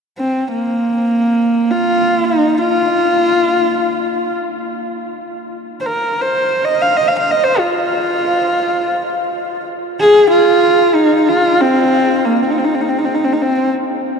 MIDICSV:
0, 0, Header, 1, 2, 480
1, 0, Start_track
1, 0, Tempo, 500000
1, 13629, End_track
2, 0, Start_track
2, 0, Title_t, "Horsehead fiddle"
2, 0, Program_c, 0, 110
2, 175, Note_on_c, 0, 60, 61
2, 480, Note_off_c, 0, 60, 0
2, 497, Note_on_c, 0, 58, 70
2, 1643, Note_on_c, 0, 65, 79
2, 1657, Note_off_c, 0, 58, 0
2, 2151, Note_on_c, 0, 63, 77
2, 2166, Note_off_c, 0, 65, 0
2, 2481, Note_on_c, 0, 65, 82
2, 2496, Note_off_c, 0, 63, 0
2, 4185, Note_off_c, 0, 65, 0
2, 5572, Note_on_c, 0, 72, 53
2, 5627, Note_on_c, 0, 70, 66
2, 5642, Note_off_c, 0, 72, 0
2, 5961, Note_on_c, 0, 72, 70
2, 5975, Note_off_c, 0, 70, 0
2, 6384, Note_on_c, 0, 75, 77
2, 6398, Note_off_c, 0, 72, 0
2, 6544, Note_on_c, 0, 77, 81
2, 6558, Note_off_c, 0, 75, 0
2, 6692, Note_on_c, 0, 75, 81
2, 6706, Note_off_c, 0, 77, 0
2, 6797, Note_on_c, 0, 77, 73
2, 6812, Note_off_c, 0, 75, 0
2, 6894, Note_off_c, 0, 77, 0
2, 6900, Note_on_c, 0, 77, 75
2, 7022, Note_on_c, 0, 75, 75
2, 7036, Note_off_c, 0, 77, 0
2, 7144, Note_on_c, 0, 72, 81
2, 7158, Note_off_c, 0, 75, 0
2, 7285, Note_on_c, 0, 65, 73
2, 7300, Note_off_c, 0, 72, 0
2, 9281, Note_off_c, 0, 65, 0
2, 9602, Note_on_c, 0, 68, 100
2, 9883, Note_off_c, 0, 68, 0
2, 9888, Note_on_c, 0, 65, 95
2, 10507, Note_on_c, 0, 63, 79
2, 10521, Note_off_c, 0, 65, 0
2, 10840, Note_on_c, 0, 65, 83
2, 10854, Note_off_c, 0, 63, 0
2, 11146, Note_on_c, 0, 60, 87
2, 11160, Note_off_c, 0, 65, 0
2, 11763, Note_on_c, 0, 58, 73
2, 11777, Note_off_c, 0, 60, 0
2, 11928, Note_on_c, 0, 60, 54
2, 11943, Note_off_c, 0, 58, 0
2, 12004, Note_on_c, 0, 63, 58
2, 12019, Note_off_c, 0, 60, 0
2, 12082, Note_on_c, 0, 60, 58
2, 12096, Note_off_c, 0, 63, 0
2, 12143, Note_on_c, 0, 63, 61
2, 12157, Note_off_c, 0, 60, 0
2, 12240, Note_on_c, 0, 60, 58
2, 12254, Note_off_c, 0, 63, 0
2, 12298, Note_on_c, 0, 63, 55
2, 12312, Note_off_c, 0, 60, 0
2, 12375, Note_on_c, 0, 60, 57
2, 12389, Note_off_c, 0, 63, 0
2, 12470, Note_on_c, 0, 63, 58
2, 12484, Note_off_c, 0, 60, 0
2, 12530, Note_on_c, 0, 60, 58
2, 12544, Note_off_c, 0, 63, 0
2, 12625, Note_on_c, 0, 63, 62
2, 12639, Note_off_c, 0, 60, 0
2, 12720, Note_on_c, 0, 60, 60
2, 12734, Note_off_c, 0, 63, 0
2, 12798, Note_on_c, 0, 63, 62
2, 12812, Note_off_c, 0, 60, 0
2, 12887, Note_on_c, 0, 60, 72
2, 12901, Note_off_c, 0, 63, 0
2, 13176, Note_off_c, 0, 60, 0
2, 13629, End_track
0, 0, End_of_file